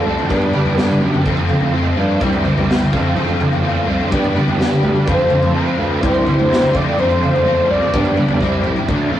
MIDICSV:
0, 0, Header, 1, 6, 480
1, 0, Start_track
1, 0, Tempo, 476569
1, 1266, Time_signature, 4, 2, 24, 8
1, 9264, End_track
2, 0, Start_track
2, 0, Title_t, "Tonewheel organ"
2, 0, Program_c, 0, 16
2, 0, Note_on_c, 0, 60, 62
2, 0, Note_on_c, 0, 65, 59
2, 0, Note_on_c, 0, 76, 56
2, 0, Note_on_c, 0, 81, 76
2, 279, Note_on_c, 0, 74, 56
2, 281, Note_off_c, 0, 76, 0
2, 282, Note_on_c, 0, 71, 62
2, 286, Note_off_c, 0, 60, 0
2, 287, Note_on_c, 0, 83, 77
2, 288, Note_off_c, 0, 65, 0
2, 288, Note_off_c, 0, 81, 0
2, 288, Note_on_c, 0, 67, 59
2, 1242, Note_off_c, 0, 74, 0
2, 1244, Note_off_c, 0, 71, 0
2, 1246, Note_off_c, 0, 83, 0
2, 1247, Note_off_c, 0, 67, 0
2, 1263, Note_on_c, 0, 76, 58
2, 1266, Note_on_c, 0, 72, 61
2, 1266, Note_on_c, 0, 81, 59
2, 1271, Note_on_c, 0, 65, 61
2, 2216, Note_off_c, 0, 81, 0
2, 2218, Note_off_c, 0, 65, 0
2, 2239, Note_on_c, 0, 84, 67
2, 2245, Note_on_c, 0, 67, 65
2, 2928, Note_off_c, 0, 72, 0
2, 2945, Note_off_c, 0, 84, 0
2, 2948, Note_off_c, 0, 67, 0
2, 2951, Note_on_c, 0, 72, 65
2, 2953, Note_on_c, 0, 81, 72
2, 2954, Note_on_c, 0, 65, 67
2, 4115, Note_off_c, 0, 76, 0
2, 4136, Note_off_c, 0, 72, 0
2, 4137, Note_off_c, 0, 81, 0
2, 4138, Note_off_c, 0, 65, 0
2, 4151, Note_on_c, 0, 67, 71
2, 4151, Note_on_c, 0, 74, 62
2, 4156, Note_on_c, 0, 71, 55
2, 4160, Note_on_c, 0, 83, 80
2, 5099, Note_off_c, 0, 67, 0
2, 5099, Note_off_c, 0, 74, 0
2, 5101, Note_off_c, 0, 71, 0
2, 5103, Note_off_c, 0, 83, 0
2, 5103, Note_on_c, 0, 76, 62
2, 5105, Note_on_c, 0, 81, 60
2, 5106, Note_on_c, 0, 60, 54
2, 5110, Note_on_c, 0, 65, 57
2, 6056, Note_off_c, 0, 81, 0
2, 6058, Note_off_c, 0, 65, 0
2, 6072, Note_on_c, 0, 84, 82
2, 6083, Note_on_c, 0, 67, 67
2, 6782, Note_off_c, 0, 84, 0
2, 6787, Note_off_c, 0, 67, 0
2, 6808, Note_on_c, 0, 81, 68
2, 6811, Note_on_c, 0, 65, 67
2, 7955, Note_off_c, 0, 76, 0
2, 7957, Note_off_c, 0, 60, 0
2, 7985, Note_off_c, 0, 81, 0
2, 7986, Note_off_c, 0, 65, 0
2, 8004, Note_on_c, 0, 71, 60
2, 8004, Note_on_c, 0, 83, 78
2, 8005, Note_on_c, 0, 67, 70
2, 8008, Note_on_c, 0, 74, 65
2, 8461, Note_off_c, 0, 67, 0
2, 8470, Note_off_c, 0, 71, 0
2, 8472, Note_off_c, 0, 74, 0
2, 8473, Note_on_c, 0, 67, 63
2, 8473, Note_on_c, 0, 72, 50
2, 8486, Note_on_c, 0, 76, 57
2, 8945, Note_off_c, 0, 67, 0
2, 8945, Note_off_c, 0, 72, 0
2, 8945, Note_off_c, 0, 83, 0
2, 8951, Note_off_c, 0, 76, 0
2, 8951, Note_on_c, 0, 54, 59
2, 8952, Note_on_c, 0, 62, 52
2, 8953, Note_on_c, 0, 57, 52
2, 8958, Note_on_c, 0, 74, 56
2, 8964, Note_on_c, 0, 69, 53
2, 9264, Note_off_c, 0, 54, 0
2, 9264, Note_off_c, 0, 57, 0
2, 9264, Note_off_c, 0, 62, 0
2, 9264, Note_off_c, 0, 69, 0
2, 9264, Note_off_c, 0, 74, 0
2, 9264, End_track
3, 0, Start_track
3, 0, Title_t, "Analog synth lead"
3, 0, Program_c, 1, 81
3, 0, Note_on_c, 1, 69, 93
3, 265, Note_off_c, 1, 69, 0
3, 300, Note_on_c, 1, 71, 71
3, 804, Note_off_c, 1, 71, 0
3, 804, Note_on_c, 1, 69, 71
3, 983, Note_off_c, 1, 69, 0
3, 4862, Note_on_c, 1, 71, 84
3, 5087, Note_off_c, 1, 71, 0
3, 5118, Note_on_c, 1, 72, 106
3, 5558, Note_off_c, 1, 72, 0
3, 5601, Note_on_c, 1, 71, 95
3, 6040, Note_off_c, 1, 71, 0
3, 6082, Note_on_c, 1, 72, 95
3, 6807, Note_on_c, 1, 74, 103
3, 6822, Note_off_c, 1, 72, 0
3, 7036, Note_off_c, 1, 74, 0
3, 7045, Note_on_c, 1, 72, 107
3, 7758, Note_on_c, 1, 74, 110
3, 7773, Note_off_c, 1, 72, 0
3, 8232, Note_off_c, 1, 74, 0
3, 9264, End_track
4, 0, Start_track
4, 0, Title_t, "Overdriven electric guitar"
4, 0, Program_c, 2, 29
4, 0, Note_on_c, 2, 53, 70
4, 57, Note_on_c, 2, 65, 63
4, 69, Note_on_c, 2, 60, 61
4, 75, Note_on_c, 2, 57, 55
4, 288, Note_off_c, 2, 65, 0
4, 289, Note_off_c, 2, 53, 0
4, 293, Note_on_c, 2, 55, 97
4, 294, Note_off_c, 2, 60, 0
4, 297, Note_off_c, 2, 57, 0
4, 302, Note_on_c, 2, 59, 99
4, 311, Note_on_c, 2, 62, 88
4, 317, Note_on_c, 2, 67, 94
4, 534, Note_off_c, 2, 67, 0
4, 546, Note_on_c, 2, 67, 75
4, 548, Note_off_c, 2, 62, 0
4, 553, Note_off_c, 2, 59, 0
4, 560, Note_on_c, 2, 62, 56
4, 565, Note_on_c, 2, 59, 58
4, 769, Note_off_c, 2, 55, 0
4, 781, Note_on_c, 2, 55, 79
4, 783, Note_off_c, 2, 59, 0
4, 785, Note_off_c, 2, 62, 0
4, 795, Note_on_c, 2, 59, 86
4, 797, Note_off_c, 2, 67, 0
4, 797, Note_on_c, 2, 62, 98
4, 809, Note_on_c, 2, 67, 90
4, 1249, Note_off_c, 2, 55, 0
4, 1256, Note_off_c, 2, 59, 0
4, 1257, Note_off_c, 2, 62, 0
4, 1259, Note_on_c, 2, 53, 80
4, 1263, Note_off_c, 2, 67, 0
4, 1266, Note_on_c, 2, 57, 90
4, 1274, Note_on_c, 2, 60, 99
4, 1283, Note_on_c, 2, 65, 102
4, 1727, Note_off_c, 2, 53, 0
4, 1737, Note_off_c, 2, 57, 0
4, 1738, Note_off_c, 2, 60, 0
4, 1739, Note_on_c, 2, 53, 66
4, 1748, Note_off_c, 2, 65, 0
4, 1749, Note_on_c, 2, 57, 75
4, 1750, Note_on_c, 2, 60, 80
4, 1760, Note_on_c, 2, 65, 78
4, 1965, Note_off_c, 2, 65, 0
4, 1977, Note_off_c, 2, 60, 0
4, 1977, Note_on_c, 2, 65, 73
4, 1989, Note_on_c, 2, 60, 62
4, 1990, Note_off_c, 2, 57, 0
4, 2002, Note_on_c, 2, 57, 53
4, 2206, Note_off_c, 2, 65, 0
4, 2208, Note_off_c, 2, 53, 0
4, 2213, Note_off_c, 2, 60, 0
4, 2219, Note_off_c, 2, 57, 0
4, 2222, Note_on_c, 2, 48, 88
4, 2229, Note_on_c, 2, 52, 83
4, 2234, Note_on_c, 2, 55, 92
4, 2237, Note_on_c, 2, 60, 103
4, 2244, Note_on_c, 2, 64, 105
4, 2444, Note_off_c, 2, 64, 0
4, 2452, Note_off_c, 2, 60, 0
4, 2456, Note_on_c, 2, 64, 57
4, 2464, Note_on_c, 2, 60, 58
4, 2465, Note_off_c, 2, 55, 0
4, 2477, Note_on_c, 2, 55, 59
4, 2687, Note_off_c, 2, 48, 0
4, 2699, Note_off_c, 2, 52, 0
4, 2699, Note_off_c, 2, 55, 0
4, 2699, Note_on_c, 2, 48, 98
4, 2708, Note_off_c, 2, 60, 0
4, 2711, Note_on_c, 2, 52, 85
4, 2711, Note_on_c, 2, 55, 98
4, 2716, Note_off_c, 2, 64, 0
4, 2720, Note_on_c, 2, 60, 101
4, 2728, Note_on_c, 2, 64, 91
4, 2928, Note_off_c, 2, 48, 0
4, 2934, Note_off_c, 2, 52, 0
4, 2934, Note_off_c, 2, 55, 0
4, 2935, Note_off_c, 2, 60, 0
4, 2938, Note_off_c, 2, 64, 0
4, 2942, Note_on_c, 2, 65, 85
4, 2947, Note_on_c, 2, 60, 81
4, 2956, Note_on_c, 2, 57, 79
4, 2961, Note_on_c, 2, 53, 79
4, 3169, Note_off_c, 2, 53, 0
4, 3177, Note_off_c, 2, 57, 0
4, 3181, Note_off_c, 2, 60, 0
4, 3181, Note_on_c, 2, 53, 88
4, 3187, Note_off_c, 2, 65, 0
4, 3189, Note_on_c, 2, 57, 95
4, 3193, Note_on_c, 2, 60, 97
4, 3199, Note_on_c, 2, 65, 96
4, 3644, Note_off_c, 2, 53, 0
4, 3656, Note_off_c, 2, 57, 0
4, 3656, Note_on_c, 2, 53, 80
4, 3664, Note_off_c, 2, 60, 0
4, 3668, Note_on_c, 2, 57, 84
4, 3669, Note_off_c, 2, 65, 0
4, 3676, Note_on_c, 2, 60, 72
4, 3682, Note_on_c, 2, 65, 79
4, 3888, Note_off_c, 2, 65, 0
4, 3900, Note_on_c, 2, 65, 70
4, 3901, Note_off_c, 2, 60, 0
4, 3911, Note_off_c, 2, 57, 0
4, 3913, Note_on_c, 2, 60, 57
4, 3924, Note_on_c, 2, 57, 57
4, 4126, Note_off_c, 2, 53, 0
4, 4128, Note_off_c, 2, 65, 0
4, 4135, Note_off_c, 2, 60, 0
4, 4140, Note_off_c, 2, 57, 0
4, 4141, Note_on_c, 2, 55, 90
4, 4151, Note_on_c, 2, 59, 101
4, 4159, Note_on_c, 2, 62, 110
4, 4163, Note_on_c, 2, 67, 105
4, 4367, Note_off_c, 2, 67, 0
4, 4379, Note_on_c, 2, 67, 65
4, 4384, Note_off_c, 2, 62, 0
4, 4390, Note_off_c, 2, 59, 0
4, 4396, Note_on_c, 2, 62, 66
4, 4402, Note_on_c, 2, 59, 58
4, 4604, Note_off_c, 2, 55, 0
4, 4614, Note_off_c, 2, 59, 0
4, 4616, Note_on_c, 2, 55, 84
4, 4622, Note_off_c, 2, 62, 0
4, 4624, Note_off_c, 2, 67, 0
4, 4626, Note_on_c, 2, 59, 81
4, 4635, Note_on_c, 2, 62, 95
4, 4636, Note_on_c, 2, 67, 110
4, 5086, Note_off_c, 2, 55, 0
4, 5091, Note_off_c, 2, 59, 0
4, 5096, Note_off_c, 2, 62, 0
4, 5097, Note_off_c, 2, 67, 0
4, 5099, Note_on_c, 2, 53, 90
4, 5109, Note_on_c, 2, 57, 88
4, 5116, Note_on_c, 2, 60, 99
4, 5122, Note_on_c, 2, 65, 106
4, 5573, Note_off_c, 2, 53, 0
4, 5576, Note_off_c, 2, 57, 0
4, 5585, Note_on_c, 2, 53, 82
4, 5586, Note_off_c, 2, 60, 0
4, 5589, Note_on_c, 2, 57, 80
4, 5590, Note_off_c, 2, 65, 0
4, 5598, Note_on_c, 2, 60, 80
4, 5602, Note_on_c, 2, 65, 92
4, 5812, Note_off_c, 2, 65, 0
4, 5824, Note_off_c, 2, 60, 0
4, 5825, Note_on_c, 2, 65, 68
4, 5834, Note_off_c, 2, 57, 0
4, 5836, Note_on_c, 2, 60, 64
4, 5846, Note_on_c, 2, 57, 60
4, 6051, Note_off_c, 2, 53, 0
4, 6051, Note_off_c, 2, 65, 0
4, 6055, Note_on_c, 2, 48, 92
4, 6056, Note_off_c, 2, 60, 0
4, 6056, Note_on_c, 2, 52, 93
4, 6061, Note_off_c, 2, 57, 0
4, 6065, Note_on_c, 2, 55, 103
4, 6071, Note_on_c, 2, 60, 91
4, 6075, Note_on_c, 2, 64, 111
4, 6275, Note_off_c, 2, 64, 0
4, 6286, Note_off_c, 2, 60, 0
4, 6287, Note_on_c, 2, 64, 63
4, 6295, Note_off_c, 2, 55, 0
4, 6299, Note_on_c, 2, 60, 54
4, 6307, Note_on_c, 2, 55, 60
4, 6521, Note_off_c, 2, 48, 0
4, 6527, Note_off_c, 2, 52, 0
4, 6531, Note_off_c, 2, 55, 0
4, 6533, Note_on_c, 2, 48, 84
4, 6538, Note_off_c, 2, 60, 0
4, 6539, Note_off_c, 2, 64, 0
4, 6539, Note_on_c, 2, 52, 103
4, 6543, Note_on_c, 2, 55, 93
4, 6550, Note_on_c, 2, 60, 92
4, 6551, Note_on_c, 2, 64, 89
4, 6765, Note_off_c, 2, 48, 0
4, 6768, Note_off_c, 2, 52, 0
4, 6768, Note_off_c, 2, 64, 0
4, 6770, Note_off_c, 2, 55, 0
4, 6773, Note_off_c, 2, 60, 0
4, 6773, Note_on_c, 2, 65, 79
4, 6784, Note_on_c, 2, 60, 89
4, 6788, Note_on_c, 2, 57, 77
4, 6797, Note_on_c, 2, 53, 70
4, 7008, Note_off_c, 2, 53, 0
4, 7011, Note_off_c, 2, 57, 0
4, 7020, Note_on_c, 2, 53, 79
4, 7022, Note_off_c, 2, 60, 0
4, 7023, Note_on_c, 2, 57, 99
4, 7028, Note_off_c, 2, 65, 0
4, 7034, Note_on_c, 2, 60, 90
4, 7041, Note_on_c, 2, 65, 98
4, 7486, Note_off_c, 2, 53, 0
4, 7497, Note_off_c, 2, 57, 0
4, 7498, Note_on_c, 2, 53, 76
4, 7501, Note_off_c, 2, 60, 0
4, 7507, Note_off_c, 2, 65, 0
4, 7509, Note_on_c, 2, 57, 76
4, 7513, Note_on_c, 2, 60, 77
4, 7519, Note_on_c, 2, 65, 80
4, 7727, Note_off_c, 2, 65, 0
4, 7739, Note_off_c, 2, 60, 0
4, 7739, Note_on_c, 2, 65, 74
4, 7751, Note_on_c, 2, 60, 69
4, 7752, Note_off_c, 2, 57, 0
4, 7764, Note_on_c, 2, 57, 57
4, 7967, Note_off_c, 2, 53, 0
4, 7968, Note_off_c, 2, 65, 0
4, 7974, Note_off_c, 2, 60, 0
4, 7980, Note_off_c, 2, 57, 0
4, 7983, Note_on_c, 2, 43, 97
4, 7989, Note_on_c, 2, 50, 92
4, 7999, Note_on_c, 2, 55, 105
4, 8002, Note_on_c, 2, 59, 109
4, 8003, Note_on_c, 2, 62, 92
4, 8218, Note_off_c, 2, 62, 0
4, 8228, Note_off_c, 2, 59, 0
4, 8230, Note_on_c, 2, 62, 61
4, 8235, Note_off_c, 2, 55, 0
4, 8240, Note_on_c, 2, 59, 65
4, 8247, Note_on_c, 2, 55, 60
4, 8450, Note_off_c, 2, 43, 0
4, 8453, Note_off_c, 2, 50, 0
4, 8453, Note_off_c, 2, 62, 0
4, 8458, Note_off_c, 2, 59, 0
4, 8462, Note_off_c, 2, 55, 0
4, 8466, Note_on_c, 2, 48, 93
4, 8473, Note_on_c, 2, 55, 89
4, 8478, Note_on_c, 2, 60, 107
4, 8485, Note_on_c, 2, 64, 103
4, 8931, Note_off_c, 2, 48, 0
4, 8935, Note_off_c, 2, 55, 0
4, 8938, Note_off_c, 2, 60, 0
4, 8941, Note_off_c, 2, 64, 0
4, 8950, Note_on_c, 2, 50, 94
4, 8952, Note_on_c, 2, 57, 90
4, 8954, Note_on_c, 2, 62, 97
4, 9176, Note_off_c, 2, 50, 0
4, 9180, Note_on_c, 2, 53, 75
4, 9182, Note_off_c, 2, 57, 0
4, 9183, Note_off_c, 2, 62, 0
4, 9188, Note_on_c, 2, 60, 86
4, 9190, Note_on_c, 2, 65, 88
4, 9264, Note_off_c, 2, 53, 0
4, 9264, Note_off_c, 2, 60, 0
4, 9264, Note_off_c, 2, 65, 0
4, 9264, End_track
5, 0, Start_track
5, 0, Title_t, "Picked electric bass"
5, 0, Program_c, 3, 34
5, 59, Note_on_c, 3, 36, 84
5, 169, Note_off_c, 3, 36, 0
5, 302, Note_on_c, 3, 43, 79
5, 515, Note_off_c, 3, 43, 0
5, 659, Note_on_c, 3, 40, 86
5, 768, Note_off_c, 3, 40, 0
5, 781, Note_on_c, 3, 43, 84
5, 999, Note_off_c, 3, 43, 0
5, 1022, Note_on_c, 3, 42, 72
5, 1240, Note_off_c, 3, 42, 0
5, 1268, Note_on_c, 3, 41, 85
5, 1583, Note_off_c, 3, 41, 0
5, 1627, Note_on_c, 3, 41, 73
5, 1943, Note_off_c, 3, 41, 0
5, 1981, Note_on_c, 3, 43, 81
5, 2194, Note_off_c, 3, 43, 0
5, 2230, Note_on_c, 3, 36, 93
5, 2544, Note_off_c, 3, 36, 0
5, 2583, Note_on_c, 3, 36, 78
5, 2901, Note_off_c, 3, 36, 0
5, 2948, Note_on_c, 3, 41, 84
5, 3158, Note_off_c, 3, 41, 0
5, 3185, Note_on_c, 3, 41, 91
5, 3556, Note_off_c, 3, 41, 0
5, 3556, Note_on_c, 3, 40, 86
5, 3868, Note_off_c, 3, 40, 0
5, 3905, Note_on_c, 3, 36, 90
5, 4011, Note_off_c, 3, 36, 0
5, 4155, Note_on_c, 3, 43, 91
5, 4362, Note_off_c, 3, 43, 0
5, 4505, Note_on_c, 3, 40, 80
5, 4716, Note_off_c, 3, 40, 0
5, 4862, Note_on_c, 3, 38, 93
5, 4969, Note_off_c, 3, 38, 0
5, 5114, Note_on_c, 3, 41, 84
5, 5427, Note_off_c, 3, 41, 0
5, 5472, Note_on_c, 3, 41, 80
5, 5786, Note_off_c, 3, 41, 0
5, 5826, Note_on_c, 3, 38, 80
5, 6037, Note_off_c, 3, 38, 0
5, 6073, Note_on_c, 3, 36, 101
5, 6386, Note_off_c, 3, 36, 0
5, 6429, Note_on_c, 3, 38, 90
5, 6744, Note_off_c, 3, 38, 0
5, 6796, Note_on_c, 3, 41, 85
5, 7002, Note_off_c, 3, 41, 0
5, 7028, Note_on_c, 3, 41, 102
5, 7382, Note_off_c, 3, 41, 0
5, 7382, Note_on_c, 3, 40, 88
5, 7700, Note_off_c, 3, 40, 0
5, 7755, Note_on_c, 3, 36, 90
5, 7856, Note_off_c, 3, 36, 0
5, 7992, Note_on_c, 3, 43, 90
5, 8200, Note_off_c, 3, 43, 0
5, 8344, Note_on_c, 3, 40, 82
5, 8450, Note_off_c, 3, 40, 0
5, 8469, Note_on_c, 3, 36, 107
5, 8679, Note_off_c, 3, 36, 0
5, 8693, Note_on_c, 3, 36, 90
5, 8804, Note_off_c, 3, 36, 0
5, 8949, Note_on_c, 3, 38, 82
5, 9171, Note_off_c, 3, 38, 0
5, 9186, Note_on_c, 3, 41, 86
5, 9264, Note_off_c, 3, 41, 0
5, 9264, End_track
6, 0, Start_track
6, 0, Title_t, "Drums"
6, 187, Note_on_c, 9, 43, 67
6, 288, Note_off_c, 9, 43, 0
6, 298, Note_on_c, 9, 43, 86
6, 306, Note_on_c, 9, 36, 101
6, 398, Note_off_c, 9, 43, 0
6, 407, Note_off_c, 9, 36, 0
6, 421, Note_on_c, 9, 43, 83
6, 522, Note_off_c, 9, 43, 0
6, 539, Note_on_c, 9, 43, 79
6, 539, Note_on_c, 9, 47, 75
6, 639, Note_off_c, 9, 43, 0
6, 639, Note_off_c, 9, 47, 0
6, 662, Note_on_c, 9, 43, 75
6, 763, Note_off_c, 9, 43, 0
6, 786, Note_on_c, 9, 38, 78
6, 887, Note_off_c, 9, 38, 0
6, 899, Note_on_c, 9, 47, 77
6, 999, Note_off_c, 9, 47, 0
6, 1019, Note_on_c, 9, 43, 88
6, 1119, Note_off_c, 9, 43, 0
6, 1150, Note_on_c, 9, 47, 77
6, 1250, Note_off_c, 9, 47, 0
6, 1265, Note_on_c, 9, 43, 82
6, 1266, Note_on_c, 9, 36, 99
6, 1365, Note_off_c, 9, 43, 0
6, 1367, Note_off_c, 9, 36, 0
6, 1380, Note_on_c, 9, 43, 79
6, 1481, Note_off_c, 9, 43, 0
6, 1502, Note_on_c, 9, 43, 82
6, 1502, Note_on_c, 9, 47, 84
6, 1602, Note_off_c, 9, 43, 0
6, 1602, Note_off_c, 9, 47, 0
6, 1616, Note_on_c, 9, 43, 83
6, 1716, Note_off_c, 9, 43, 0
6, 2219, Note_on_c, 9, 43, 80
6, 2228, Note_on_c, 9, 36, 102
6, 2320, Note_off_c, 9, 43, 0
6, 2329, Note_off_c, 9, 36, 0
6, 2347, Note_on_c, 9, 43, 77
6, 2447, Note_off_c, 9, 43, 0
6, 2470, Note_on_c, 9, 43, 77
6, 2470, Note_on_c, 9, 47, 82
6, 2570, Note_off_c, 9, 43, 0
6, 2570, Note_off_c, 9, 47, 0
6, 2594, Note_on_c, 9, 43, 84
6, 2694, Note_off_c, 9, 43, 0
6, 2727, Note_on_c, 9, 38, 84
6, 2828, Note_off_c, 9, 38, 0
6, 2838, Note_on_c, 9, 47, 79
6, 2939, Note_off_c, 9, 47, 0
6, 2952, Note_on_c, 9, 36, 97
6, 2955, Note_on_c, 9, 43, 81
6, 3053, Note_off_c, 9, 36, 0
6, 3056, Note_off_c, 9, 43, 0
6, 3187, Note_on_c, 9, 43, 89
6, 3288, Note_off_c, 9, 43, 0
6, 3308, Note_on_c, 9, 43, 74
6, 3408, Note_off_c, 9, 43, 0
6, 3433, Note_on_c, 9, 43, 85
6, 3433, Note_on_c, 9, 47, 77
6, 3534, Note_off_c, 9, 43, 0
6, 3534, Note_off_c, 9, 47, 0
6, 3557, Note_on_c, 9, 43, 88
6, 3658, Note_off_c, 9, 43, 0
6, 4037, Note_on_c, 9, 43, 65
6, 4137, Note_off_c, 9, 43, 0
6, 4146, Note_on_c, 9, 43, 80
6, 4153, Note_on_c, 9, 36, 102
6, 4247, Note_off_c, 9, 43, 0
6, 4254, Note_off_c, 9, 36, 0
6, 4274, Note_on_c, 9, 43, 83
6, 4374, Note_off_c, 9, 43, 0
6, 4393, Note_on_c, 9, 43, 74
6, 4393, Note_on_c, 9, 47, 75
6, 4494, Note_off_c, 9, 43, 0
6, 4494, Note_off_c, 9, 47, 0
6, 4511, Note_on_c, 9, 43, 80
6, 4612, Note_off_c, 9, 43, 0
6, 4641, Note_on_c, 9, 38, 80
6, 4742, Note_off_c, 9, 38, 0
6, 4756, Note_on_c, 9, 47, 85
6, 4857, Note_off_c, 9, 47, 0
6, 4868, Note_on_c, 9, 43, 77
6, 4969, Note_off_c, 9, 43, 0
6, 4985, Note_on_c, 9, 47, 75
6, 5086, Note_off_c, 9, 47, 0
6, 5108, Note_on_c, 9, 43, 89
6, 5113, Note_on_c, 9, 36, 119
6, 5209, Note_off_c, 9, 43, 0
6, 5213, Note_off_c, 9, 36, 0
6, 5226, Note_on_c, 9, 43, 78
6, 5327, Note_off_c, 9, 43, 0
6, 5342, Note_on_c, 9, 43, 86
6, 5342, Note_on_c, 9, 47, 79
6, 5442, Note_off_c, 9, 43, 0
6, 5442, Note_off_c, 9, 47, 0
6, 5465, Note_on_c, 9, 43, 85
6, 5566, Note_off_c, 9, 43, 0
6, 6072, Note_on_c, 9, 43, 85
6, 6075, Note_on_c, 9, 36, 111
6, 6172, Note_off_c, 9, 43, 0
6, 6175, Note_off_c, 9, 36, 0
6, 6191, Note_on_c, 9, 43, 81
6, 6292, Note_off_c, 9, 43, 0
6, 6312, Note_on_c, 9, 43, 83
6, 6312, Note_on_c, 9, 47, 83
6, 6413, Note_off_c, 9, 43, 0
6, 6413, Note_off_c, 9, 47, 0
6, 6438, Note_on_c, 9, 43, 76
6, 6539, Note_off_c, 9, 43, 0
6, 6576, Note_on_c, 9, 38, 84
6, 6677, Note_off_c, 9, 38, 0
6, 6684, Note_on_c, 9, 47, 76
6, 6785, Note_off_c, 9, 47, 0
6, 6796, Note_on_c, 9, 36, 99
6, 6797, Note_on_c, 9, 43, 76
6, 6896, Note_off_c, 9, 36, 0
6, 6898, Note_off_c, 9, 43, 0
6, 7037, Note_on_c, 9, 43, 87
6, 7138, Note_off_c, 9, 43, 0
6, 7159, Note_on_c, 9, 43, 87
6, 7260, Note_off_c, 9, 43, 0
6, 7287, Note_on_c, 9, 43, 72
6, 7287, Note_on_c, 9, 47, 70
6, 7388, Note_off_c, 9, 43, 0
6, 7388, Note_off_c, 9, 47, 0
6, 7411, Note_on_c, 9, 43, 76
6, 7512, Note_off_c, 9, 43, 0
6, 7879, Note_on_c, 9, 43, 64
6, 7980, Note_off_c, 9, 43, 0
6, 7995, Note_on_c, 9, 36, 110
6, 7999, Note_on_c, 9, 43, 85
6, 8096, Note_off_c, 9, 36, 0
6, 8099, Note_off_c, 9, 43, 0
6, 8112, Note_on_c, 9, 43, 83
6, 8212, Note_off_c, 9, 43, 0
6, 8231, Note_on_c, 9, 43, 75
6, 8231, Note_on_c, 9, 47, 78
6, 8332, Note_off_c, 9, 43, 0
6, 8332, Note_off_c, 9, 47, 0
6, 8345, Note_on_c, 9, 43, 91
6, 8445, Note_off_c, 9, 43, 0
6, 8468, Note_on_c, 9, 36, 66
6, 8569, Note_off_c, 9, 36, 0
6, 8702, Note_on_c, 9, 45, 76
6, 8802, Note_off_c, 9, 45, 0
6, 8826, Note_on_c, 9, 43, 82
6, 8927, Note_off_c, 9, 43, 0
6, 8947, Note_on_c, 9, 43, 79
6, 8950, Note_on_c, 9, 36, 103
6, 9048, Note_off_c, 9, 43, 0
6, 9051, Note_off_c, 9, 36, 0
6, 9264, End_track
0, 0, End_of_file